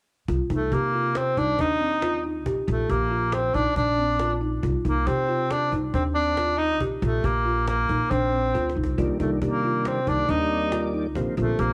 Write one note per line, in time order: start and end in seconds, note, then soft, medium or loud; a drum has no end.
0.28 0.39 C2 medium
0.28 0.46 F4 medium
0.28 cajon bass medium
0.50 0.71 C2 medium
0.50 0.75 A3 medium
0.50 0.68 D#4 medium
0.50 cajon bass medium
0.72 1.34 C3 medium
0.72 1.19 A#3 medium
0.72 0.90 G4 medium
0.72 cajon bass medium
0.94 1.29 F4 medium
0.94 cajon slap soft
1.15 1.40 C4 medium
1.15 cajon slap medium
1.37 1.58 C2 medium
1.37 1.62 D4 medium
1.37 1.55 D#4 medium
1.37 cajon bass medium
1.59 2.46 D#2 medium
1.59 1.76 D4 medium
1.59 2.25 D#4 medium
1.59 cajon bass medium
1.80 1.98 C4 medium
1.80 cajon slap soft
2.02 2.20 F4 medium
2.02 cajon slap medium
2.24 2.42 D#4 medium
2.24 cajon slap soft
2.46 2.56 A#1 medium
2.46 2.64 G4 medium
2.46 cajon bass loud
2.68 2.88 A#1 medium
2.68 2.92 A3 medium
2.68 2.85 F4 medium
2.68 cajon bass medium
2.89 3.51 A#1 medium
2.89 3.36 A#3 medium
2.89 3.07 G4 medium
2.89 cajon bass medium
3.11 3.46 F4 medium
3.11 cajon slap soft
3.32 3.56 C4 medium
3.32 cajon slap medium
3.54 3.65 A#1 medium
3.54 3.76 D4 medium
3.54 3.72 D#4 medium
3.54 cajon bass medium
3.76 4.59 A#1 medium
3.76 3.94 D4 medium
3.76 4.38 D4 medium
3.76 cajon bass medium
3.76 cajon slap soft
3.98 4.16 C4 medium
4.19 4.38 F4 medium
4.19 cajon slap medium
4.41 4.59 D#4 medium
4.41 cajon slap soft
4.63 4.74 C2 medium
4.63 4.81 F4 medium
4.63 cajon bass medium
4.85 5.06 C2 medium
4.85 5.08 A#3 medium
4.85 5.03 D#4 medium
4.85 cajon bass medium
5.07 5.69 C3 medium
5.07 5.52 C4 medium
5.07 5.24 G4 medium
5.07 cajon bass medium
5.28 5.64 F4 medium
5.28 cajon slap soft
5.50 5.72 D4 medium
5.50 cajon slap medium
5.72 5.93 C2 medium
5.72 5.90 D#4 medium
5.72 cajon bass medium
5.93 6.81 D#2 medium
5.93 6.03 C4 medium
5.93 6.11 D4 medium
5.93 cajon bass medium
6.14 6.33 C4 medium
6.14 6.59 D4 medium
6.14 cajon slap soft
6.37 6.55 F4 medium
6.37 cajon slap medium
6.57 6.80 D#4 medium
6.57 6.77 D#4 medium
6.57 cajon slap soft
6.80 6.91 A#1 medium
6.80 6.98 G4 medium
6.80 cajon bass medium
7.02 7.23 A#1 medium
7.02 7.27 A3 medium
7.02 7.20 F4 medium
7.02 cajon bass medium
7.24 7.86 A#1 medium
7.24 7.67 A#3 medium
7.24 7.42 G4 medium
7.24 cajon bass medium
7.45 7.81 F4 medium
7.45 cajon slap soft
7.68 8.12 A#3 medium
7.68 cajon slap medium
7.89 8.00 A#1 medium
7.89 8.07 D#4 medium
7.89 cajon bass medium
7.89 cajon slap soft
8.11 8.52 A#1 medium
8.11 8.76 C4 medium
8.11 8.29 D4 medium
8.11 cajon bass medium
8.33 8.50 C4 medium
8.33 cajon slap soft
8.54 8.74 D2 medium
8.54 8.72 F4 medium
8.54 cajon slap medium
8.70 cajon slap soft
8.76 8.96 C2 medium
8.76 8.94 D#4 medium
8.76 cajon slap soft
8.84 cajon bass medium
8.98 9.09 C2 medium
8.98 9.18 D#3 medium
8.98 9.18 G3 medium
8.98 9.18 A#3 medium
8.98 9.18 D4 medium
8.98 9.16 F4 medium
8.98 cajon bass medium
9.20 9.41 C2 medium
9.20 9.39 D#3 medium
9.20 9.40 G3 medium
9.20 9.31 A3 medium
9.20 9.40 A#3 medium
9.20 9.40 D4 medium
9.20 9.37 D#4 medium
9.20 cajon bass medium
9.41 10.04 C3 medium
9.41 10.00 D#3 medium
9.41 10.01 G3 medium
9.41 10.01 A#3 medium
9.41 9.89 A#3 medium
9.41 10.01 D4 medium
9.41 9.59 G4 medium
9.41 cajon bass medium
9.63 9.99 F4 medium
9.63 cajon slap soft
9.85 10.10 C4 medium
9.85 cajon slap medium
10.06 10.28 C2 medium
10.06 10.26 D#3 medium
10.06 10.26 G3 medium
10.06 10.27 A#3 medium
10.06 10.27 D4 medium
10.06 10.31 D4 medium
10.06 10.25 D#4 medium
10.06 cajon bass medium
10.28 11.15 D#2 medium
10.28 11.07 D#3 medium
10.28 11.07 G3 medium
10.28 11.07 A#3 medium
10.28 10.46 D4 medium
10.28 10.94 D#4 medium
10.28 11.07 D5 medium
10.28 cajon bass medium
10.50 10.68 C4 medium
10.50 cajon slap soft
10.71 10.89 F4 medium
10.71 cajon slap loud
10.93 11.11 D#4 medium
10.93 cajon slap soft
11.15 11.26 A#1 medium
11.15 11.35 D3 medium
11.15 11.35 F3 medium
11.15 11.36 A#3 medium
11.15 11.36 C4 medium
11.15 11.33 G4 medium
11.15 cajon bass medium
11.37 11.58 A#1 medium
11.37 11.57 D3 medium
11.37 11.57 F3 medium
11.37 11.61 A3 medium
11.37 11.57 A#3 medium
11.37 11.57 C4 medium
11.37 11.55 F4 medium
11.37 cajon bass medium
11.59 11.73 A#1 medium
11.59 11.73 D3 medium
11.59 11.73 F3 medium
11.59 11.73 A#3 medium
11.59 11.73 C4 medium
11.59 11.73 G4 medium
11.59 cajon bass medium